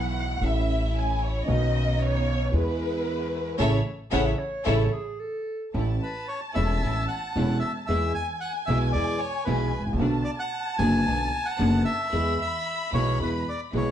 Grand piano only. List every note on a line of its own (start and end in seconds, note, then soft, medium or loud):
0.00 0.37 B1 medium
0.00 0.37 B2 medium
0.00 0.36 E3 soft
0.00 0.36 F#3 soft
0.00 0.37 B3 soft
0.00 0.37 F#4 medium
0.41 1.42 A1 medium
0.41 1.42 A2 medium
0.41 1.41 E3 soft
0.41 1.42 A3 soft
0.41 1.43 C#4 soft
0.41 1.43 A4 medium
1.46 2.48 B1 medium
1.46 2.48 B2 medium
1.46 2.47 D#3 medium
1.46 2.48 B3 medium
1.46 2.48 C#4 soft
1.46 2.49 F#4 medium
2.52 3.54 E2 medium
2.52 3.54 E3 medium
2.52 3.54 G#3 soft
2.52 3.54 B3 medium
2.52 3.55 G#4 medium
3.58 3.76 C#3 medium
3.58 3.76 E3 medium
3.58 3.75 A3 medium
4.12 4.30 C#3 medium
4.12 4.30 E3 medium
4.12 4.29 A3 medium
4.66 4.83 C#3 medium
4.66 4.84 E3 medium
4.66 4.84 A3 medium
5.74 5.97 A1 medium
5.74 5.97 A2 medium
5.74 5.97 E3 medium
5.74 5.97 A3 medium
5.74 5.97 C#4 soft
5.74 5.97 A4 medium
6.55 6.78 E1 medium
6.55 6.78 E2 medium
6.55 6.78 E3 medium
6.55 6.78 A3 medium
6.55 6.78 C#4 medium
6.55 6.78 A4 medium
6.82 7.05 A1 soft
6.82 7.05 A2 soft
6.82 7.05 E3 soft
6.82 7.05 A3 soft
6.82 7.05 C#4 soft
6.82 7.05 A4 soft
7.36 7.58 E1 medium
7.36 7.58 E2 medium
7.36 7.58 E3 medium
7.36 7.58 A3 medium
7.36 7.58 C#4 medium
7.36 7.58 A4 medium
7.88 8.11 E2 medium
7.88 8.11 E3 medium
7.88 8.11 G#3 soft
7.88 8.11 B3 medium
7.88 8.11 G#4 medium
8.68 8.90 B1 medium
8.68 8.90 B2 medium
8.68 8.90 E3 medium
8.68 8.90 G#3 medium
8.68 8.90 B3 medium
8.68 8.91 G#4 medium
8.94 9.17 E2 soft
8.94 9.17 E3 soft
8.94 9.17 G#3 soft
8.94 9.17 B3 soft
8.94 9.17 G#4 soft
9.46 9.69 B1 medium
9.46 9.69 B2 medium
9.46 9.69 E3 medium
9.46 9.69 G#3 medium
9.46 9.69 B3 medium
9.46 9.69 G#4 medium
9.80 9.87 G#1 soft
9.86 9.93 A1 medium
9.92 9.99 A#1 medium
9.99 10.21 B1 medium
9.99 10.21 B2 medium
9.99 10.21 D3 medium
9.99 10.22 A3 medium
9.99 10.21 B3 medium
9.99 10.22 F#4 medium
10.78 11.01 F#1 medium
10.78 11.01 F#2 medium
10.78 11.01 D3 medium
10.78 11.01 A3 medium
10.78 11.01 B3 medium
10.78 11.01 F#4 medium
11.06 11.28 B1 soft
11.06 11.28 B2 soft
11.06 11.28 D3 soft
11.06 11.28 A3 soft
11.06 11.28 B3 soft
11.06 11.29 F#4 soft
11.59 11.82 F#1 medium
11.59 11.82 F#2 medium
11.59 11.82 D3 medium
11.59 11.82 A3 medium
11.59 11.82 B3 medium
11.59 11.82 F#4 medium
12.12 12.35 E2 medium
12.12 12.36 E3 medium
12.12 12.35 G#3 medium
12.12 12.35 B3 soft
12.12 12.35 G#4 medium
12.94 13.16 B1 medium
12.94 13.16 B2 medium
12.94 13.16 E3 medium
12.94 13.16 G#3 medium
12.94 13.16 B3 medium
12.94 13.16 G#4 medium
13.19 13.43 E2 soft
13.19 13.42 E3 soft
13.19 13.42 G#3 soft
13.19 13.42 B3 soft
13.19 13.43 G#4 soft
13.74 13.91 B1 medium
13.74 13.91 B2 medium
13.74 13.91 E3 medium
13.74 13.91 G#3 medium
13.74 13.91 B3 medium
13.74 13.91 G#4 medium